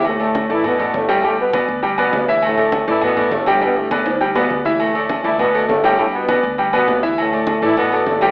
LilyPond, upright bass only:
\new Staff \with { instrumentName = "Upright bass" } { \clef bass \time 4/4 \key g \lydian \tempo 4 = 202 d,4. a,,4. g,,4~ | g,,4. d,4. d,4~ | d,4. a,,4. g,,4~ | g,,4. d,4. d,4~ |
d,4. d,4. g,,4~ | g,,4. d,4. d,4~ | d,4. a,,4. g,,4 | }